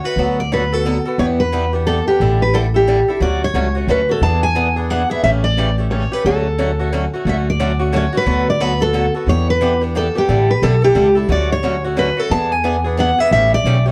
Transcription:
0.04 A3 C#4 F#4 B4
0.16 D2 D3 F#3 B3 F#4 A4
0.40 D5
0.52 D3 F#3 B3 F#4 A4 B4
0.72 B3 F#4 A4
0.85 D3 F#3 B3 F#4 A4
1.05 B3 F#4 A4
1.18 E2 E3 B3 D4 G4 C#5
1.40 B4
1.53 E3 B3 D4 G4
1.73 B3 D4 G4
1.86 E3 B3 D4 G4 A4
2.07 B3 D4 G4
2.20 A1 D3 G3 D4 E4 A4
2.42 B4
2.54 D3 G3 D4 E4 A4
2.74 D4 E4 G4 A4
2.87 D3 G3 D4 E4 A4
3.08 D4 E4 A4
3.20 D2 D3 F#3 A3 C#4 F#4 D5
3.44 C#5
3.54 C#2 D3 F#3 A3 C#4 F#4
3.75 A3 C#4 F#4
3.87 D2 D3 F#3 A3 C#4 F#4 B4
4.09 A3 C#4 F#4 A4
4.21 E2 E3 B3 D4 G#4 A5
4.43 G#5
4.55 E3 B3 D4 G#4
4.76 B3 D4 G#4
4.90 E3 B3 D4 G#4 F#5
5.10 B3 D4 G#4 E5
5.23 A1 C#3 E3 A3 C#4 G4 E5
5.44 D5
5.58 C#3 E3 A3 C#4 G4
5.78 A3 C#4 G4
5.91 C#3 E3 A3 C#4 G4 C#5
6.12 A3 C#4 G4 B4
6.25 D2 D3 F#3 A3 C#4 F#4 A4
6.58 D3 F#3 A3 C#4 F#4
6.80 A3 C#4 F#4
6.93 D3 F#3 A3 C#4 F#4
7.14 A3 C#4 F#4
7.25 D2 D3 F#3 A3 C#4 F#4 E5
7.50 D5
7.59 D3 F#3 A3 C#4 F#4
7.79 A3 C#4 F#4
7.92 D3 F#3 A3 C#4 F#4 C#5
8.13 A3 C#4 F#4
8.17 B4
8.26 D2 D3 F#3 B3 F#4 A4
8.50 D5
8.60 D3 F#3 B3 F#4 A4 B4
8.81 B3 F#4 A4
8.93 D3 F#3 B3 F#4 A4
9.14 B3 F#4 A4
9.26 E2 E3 B3 D4 G4 C#5
9.50 B4
9.61 E3 B3 D4 G4
9.81 B3 D4 G4
9.95 E3 B3 D4 G4 A4
10.15 B3 D4 G4
10.28 A1 D3 G3 D4 E4 A4
10.50 B4
10.62 B1 D3 G3 D4 E4 A4
10.82 D4 E4 G4 A4
10.95 C#2 D3 G3 D4 E4 A4
11.15 D4 E4 A4
11.29 D2 D3 F#3 A3 C#4 F#4 D5
11.52 C#5
11.63 D3 F#3 A3 C#4 F#4
11.84 A3 C#4 F#4
11.96 D3 F#3 A3 C#4 F#4 B4
12.17 A3 C#4 F#4 A4
12.30 E2 E3 B3 D4 G#4 A5
12.52 G#5
12.64 E3 B3 D4 G#4
12.84 B3 D4 G#4
12.97 E3 B3 D4 G#4 F#5
13.18 B3 D4 G#4 E5
13.31 A1 C#3 E3 A3 C#4 G4 E5
13.54 D5
13.65 B1 C#3 E3 A3 C#4 G4
13.86 A3 C#4 G4

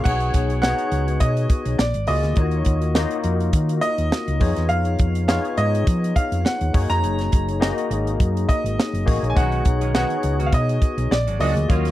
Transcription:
0.04 B1 B3 D#4 F#4 G#4 C#5 F#5, kick, crash
0.20 closed hi-hat
0.34 B1, kick, closed hi-hat
0.50 closed hi-hat
0.62 B3 D#4 F#4 G#4 C#5 F#5, snare
0.78 closed hi-hat
0.92 C#2, closed hi-hat
1.08 closed hi-hat
1.20 B2 D#5, kick, closed hi-hat
1.37 closed hi-hat
1.50 kick, closed hi-hat
1.65 B1, closed hi-hat
1.79 A#1 D5, snare
1.94 G#1, closed hi-hat
2.07 C#2 A#3 F4 F#4 G#4 D5 D#5, open hi-hat
2.23 D2, snare, closed hi-hat
2.36 D#2 A#3 D#4 F4 F#4 C#5, kick, closed hi-hat
2.51 closed hi-hat
2.65 D#2, kick, closed hi-hat
2.82 closed hi-hat
2.95 A#3 D#4 F4 F#4 D#5, snare
3.11 closed hi-hat
3.24 F2, closed hi-hat
3.40 closed hi-hat
3.53 D#3, kick, closed hi-hat
3.69 closed hi-hat
3.81 D#5, closed hi-hat
3.98 D#2, closed hi-hat
4.12 snare
4.28 C#2, closed hi-hat
4.40 F2 B3 D#4 F4 G#4 C#5, kick, open hi-hat
4.56 E2, snare, closed hi-hat
4.69 F2 F5, closed hi-hat
4.85 closed hi-hat
4.99 F2, kick, closed hi-hat
5.15 closed hi-hat
5.28 B3 D#4 F4 G#4 C#5 F5, snare
5.45 closed hi-hat
5.57 G#2 D#5, closed hi-hat
5.75 closed hi-hat
5.87 F3, kick, closed hi-hat
6.04 closed hi-hat
6.16 F5, kick, closed hi-hat
6.32 F2, closed hi-hat
6.45 F#5, snare
6.61 D#2, closed hi-hat
6.73 F#2 A#3 D#4 F#4 G#4 C#5, kick, open hi-hat
6.90 F2 A#5, snare, closed hi-hat
7.04 F#1, closed hi-hat
7.19 snare, closed hi-hat
7.32 F#1, kick, closed hi-hat
7.48 closed hi-hat
7.60 A#3 D#4 F#4 G#4 D#5, snare
7.78 closed hi-hat
7.90 G#1, closed hi-hat
8.07 closed hi-hat
8.20 F#2, kick, closed hi-hat
8.37 closed hi-hat
8.49 D#5, kick, closed hi-hat
8.64 G#1, closed hi-hat
8.80 snare
8.93 F#1, closed hi-hat
9.06 A1 A#3 D#4 F#4 G#4 C#5, kick, open hi-hat
9.23 A#1, closed hi-hat
9.30 G#5
9.35 B1 D#3 G#3 B3 C#4 D#4 F#4 G#4 C#5 F#5, kick, closed hi-hat
9.52 closed hi-hat
9.65 B1, muted clean electric guitar stroke, kick, closed hi-hat
9.81 D#3 G#3 C#4 G#4, closed hi-hat
9.94 D#3 G#3 B3 C#4 D#4 F#4 G#4 C#5 F#5, snare
10.10 muted clean electric guitar stroke, closed hi-hat
10.23 C#2, muted clean electric guitar stroke, closed hi-hat
10.39 D#3 G#3 C#4 F#4, closed hi-hat
10.46 F5
10.52 B2 D#5, kick, closed hi-hat
10.69 muted clean electric guitar stroke, closed hi-hat
10.82 kick, closed hi-hat
10.97 B1, muted clean electric guitar stroke, closed hi-hat
11.11 A#1 D5, muted clean electric guitar stroke, snare
11.26 G#1 F#3 G#3 D4 F#4, closed hi-hat
11.39 C#2 F#3 G#3 A#3 D4 F4 F#4 G#4 D5 D#5, open hi-hat
11.55 D2, muted clean electric guitar stroke, closed hi-hat
11.68 D#2 F#3 A#3 C#4 D#4 F4 F#4 C#5, kick, closed hi-hat
11.85 snare, closed hi-hat

